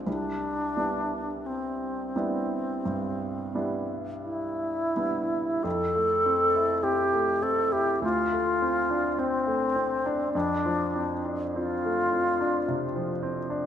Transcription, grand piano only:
0.07 0.74 C2 soft
0.77 2.12 G3 soft
0.77 2.13 B3 soft
0.77 2.13 D4 soft
0.77 2.13 E4 soft
2.16 2.82 G3 soft
2.16 2.82 B3 soft
2.16 2.82 D4 soft
2.16 2.82 E4 soft
2.85 3.53 G2 soft
3.55 4.92 G3 soft
3.55 4.92 B3 soft
3.55 4.92 D4 soft
3.55 4.92 E4 soft
4.96 5.61 G3 soft
4.96 5.61 B3 soft
4.96 5.61 D4 soft
4.96 5.62 E4 soft
5.64 7.98 F2 medium
5.95 6.43 A3 soft
6.26 6.73 C4 soft
6.55 7.02 E4 soft
6.83 7.31 C4 soft
7.13 7.61 A3 soft
7.42 7.90 C4 soft
7.72 8.02 E4 soft
8.02 10.30 D2 medium
8.32 8.79 A3 soft
8.62 9.08 C4 soft
8.90 9.35 D4 soft
9.18 9.64 C4 soft
9.47 9.93 A3 soft
9.76 10.22 C4 soft
10.06 10.35 D4 soft
10.35 12.64 F2 soft
10.65 11.13 F3 soft
10.96 11.43 C4 soft
11.25 11.72 D4 soft
11.56 12.01 C4 soft
11.85 12.29 A3 soft
12.13 12.57 C4 soft
12.41 12.84 D4 soft
12.68 13.12 C3 soft
12.96 13.39 F3 soft
13.23 13.66 C4 soft
13.50 13.66 D4 soft

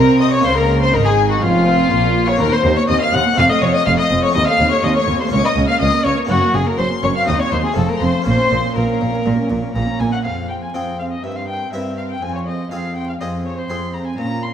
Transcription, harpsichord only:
0.00 0.40 A3 medium
0.00 0.41 C4 medium
0.00 0.41 D#4 medium
0.00 0.41 F4 medium
0.40 2.34 A#3 medium
0.40 2.35 C#4 medium
0.40 2.35 F4 medium
0.45 0.90 C#3 medium
0.94 1.39 G#2 medium
1.42 1.87 F2 medium
1.91 2.36 A#2 medium
2.36 3.32 A#3 medium
2.36 3.33 C4 medium
2.36 3.34 F#4 medium
2.40 2.62 D#2 medium
2.64 2.86 D#2 medium
2.89 3.11 D#2 medium
3.13 3.35 D#2 medium
3.33 4.29 A3 medium
3.33 4.31 C4 medium
3.33 4.31 F4 medium
3.38 3.60 F2 medium
3.62 3.84 F2 medium
3.86 4.08 F2 medium
4.10 4.32 F2 medium
4.30 5.27 A3 medium
4.30 5.28 C4 medium
4.30 5.28 F4 medium
4.35 4.57 D#2 medium
4.59 4.81 D#2 medium
4.83 5.05 D#2 medium
5.07 5.29 D#2 medium
5.27 6.24 A#3 medium
5.27 6.25 C#4 medium
5.27 6.26 F4 medium
5.32 5.54 C#2 medium
5.56 5.78 C#2 medium
5.80 6.02 C#2 medium
6.05 6.27 C#2 medium
6.25 7.22 A#3 medium
6.25 7.23 C#4 medium
6.25 7.23 F#4 medium
6.29 6.52 F#2 medium
6.54 6.76 F#2 medium
6.79 7.01 F#2 medium
7.03 7.25 F#2 medium
7.23 7.73 C4 medium
7.23 7.74 F#4 medium
7.27 7.50 D#2 medium
7.52 7.74 D#2 medium
7.72 8.23 A3 medium
7.72 8.23 C4 medium
7.72 8.24 F4 medium
7.77 7.99 F2 medium
8.02 8.24 F2 medium
8.22 10.19 A#3 medium
8.22 10.20 C#4 medium
8.22 10.20 F4 medium
8.26 8.49 A#2 medium
8.51 8.74 A#2 medium
8.76 8.99 A#2 medium
9.01 9.23 A#2 medium
9.26 9.48 A#2 medium
9.51 9.73 A#2 medium
9.76 9.98 A#2 medium
10.01 10.23 A#2 medium
10.25 10.66 F2 soft
10.74 11.15 F2 soft
10.74 11.10 C4 soft
10.74 11.10 F4 soft
10.74 11.11 G#4 soft
11.24 11.64 G2 soft
11.73 12.13 G2 soft
11.73 12.08 C4 soft
11.73 12.09 E4 soft
11.73 12.09 A#4 soft
12.22 12.63 F2 soft
12.71 13.11 F2 soft
12.71 13.07 C4 soft
12.71 13.07 F4 soft
12.71 13.07 G#4 soft
13.21 13.61 F2 soft
13.21 13.56 C4 soft
13.21 13.56 F4 soft
13.21 13.57 G#4 soft
13.70 14.10 F2 soft
13.70 14.05 C4 soft
13.70 14.05 F4 soft
13.70 14.05 G#4 soft
14.18 14.54 A#2 soft

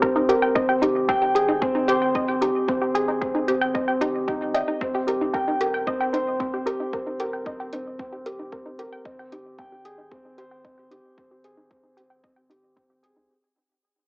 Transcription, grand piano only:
0.00 0.03 C4 medium
0.00 0.28 C4 medium
0.00 0.57 G4 medium
0.00 0.29 A#4 medium
0.29 0.54 A#4 medium
0.55 0.81 C4 medium
0.82 1.07 G4 medium
1.09 1.34 G5 medium
1.35 1.60 G#4 medium
1.62 1.87 C4 medium
1.88 2.14 C5 medium
2.15 2.40 C4 medium
2.41 2.67 G4 medium
2.68 2.93 C4 medium
2.94 3.20 G#4 medium
3.21 3.46 C4 medium
3.48 3.73 C4 medium
3.74 3.99 C4 medium
4.01 4.26 G4 medium
4.28 4.53 D#4 medium
4.54 4.79 D#5 medium
4.81 5.06 C4 medium
5.07 5.32 G4 medium
5.34 5.59 G5 medium
5.61 5.85 A#4 medium
5.87 6.12 C4 medium
6.13 6.38 C5 medium
6.40 6.65 C4 medium
6.66 6.91 G4 medium
6.93 7.18 C4 medium
7.19 7.45 A#4 medium
7.45 7.71 C4 medium
7.73 7.98 C4 medium
7.99 8.24 C4 medium
8.26 8.51 G4 medium
8.52 8.77 C4 medium
8.79 9.04 A#4 medium
9.05 9.30 C4 medium
9.32 9.57 G4 medium
9.59 9.84 G5 medium
9.85 10.10 G#4 medium
10.12 10.37 C4 medium
10.38 10.63 C5 medium
10.65 10.90 C4 medium
10.91 11.16 G4 medium
11.18 11.43 C4 medium
11.45 11.70 G#4 medium
11.71 11.96 C4 medium
11.98 12.22 C4 medium
12.24 12.49 C4 medium
12.50 12.75 G4 medium
12.77 13.02 C4 medium
13.04 13.29 G#4 medium

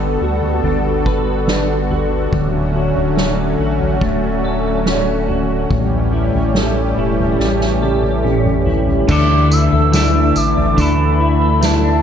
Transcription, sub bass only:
0.00 0.18 G1 medium
0.21 0.61 D2 medium
0.63 2.29 G1 medium
2.33 2.93 D1 loud
2.96 3.56 D1 medium
3.59 3.99 A1 medium
4.01 5.67 D1 medium
5.71 6.31 A1 loud
6.34 6.94 A1 medium
6.97 7.37 E1 medium
7.39 9.05 A1 medium
9.09 9.69 D2 loud
9.73 10.33 D2 loud
10.36 10.76 A1 medium
10.78 12.02 D2 loud

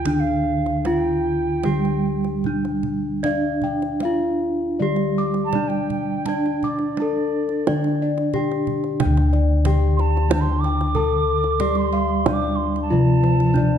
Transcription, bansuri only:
0.00 0.21 G5 loud
0.20 0.87 F5 loud
0.86 2.68 G5 medium
5.45 5.70 A5 loud
5.68 6.65 G5 medium
6.68 8.50 D5 medium
9.97 10.42 A5 loud
9.97 10.01 C6 medium
10.41 10.62 C6 loud
10.60 11.78 D6 loud
11.77 12.34 C6 loud
12.33 12.57 D6 medium
12.56 12.81 C6 loud
12.82 13.78 A5 loud

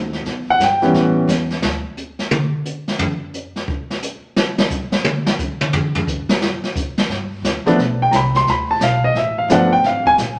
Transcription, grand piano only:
0.50 0.61 F#5 loud
0.64 1.14 G5 medium
0.82 1.26 E3 medium
0.82 1.26 G3 medium
0.82 1.27 B3 medium
0.82 1.27 C#4 medium
7.66 7.77 F3 medium
7.66 7.77 A3 medium
7.66 7.78 B3 medium
7.66 7.78 D4 medium
8.02 8.13 G5 medium
8.11 8.14 A#5 medium
8.16 8.36 B5 medium
8.36 8.47 C6 loud
8.50 8.70 B5 medium
8.71 8.82 A5 medium
8.83 9.04 F5 medium
9.04 9.16 D#5 medium
9.17 9.38 E5 medium
9.38 9.50 F5 medium
9.50 9.69 F3 medium
9.50 9.70 A3 medium
9.50 9.70 B3 medium
9.50 9.70 D4 medium
9.50 9.72 F#5 medium
9.73 9.84 G5 loud
9.86 10.06 F5 medium
10.07 10.14 G#5 loud

